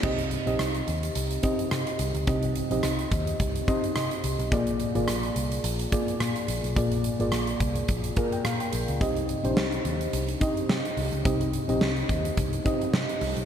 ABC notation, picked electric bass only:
X:1
M:4/4
L:1/16
Q:"Swing 16ths" 1/4=107
K:Cm
V:1 name="Picked electric bass" clef=bass
C,,3 B,,, C,,2 E,,2 C,,2 z2 C, z C,, _D,, | C,,3 B,,, C,,2 E,,2 C,,2 z2 C, z C,, =B,,, | B,,,3 A,,, B,,,2 C,,2 B,,,2 z2 B,, z B,,, =B,,, | B,,,3 A,,, B,,,2 C,,2 B,,,2 z2 B,, z B,,, _D,, |
C,,3 B,,, C,,2 E,,2 C,,2 z2 C, z C,, _D,, | C,,3 B,,, C,,2 E,,2 C,,2 z2 C, z C,, =B,,, |]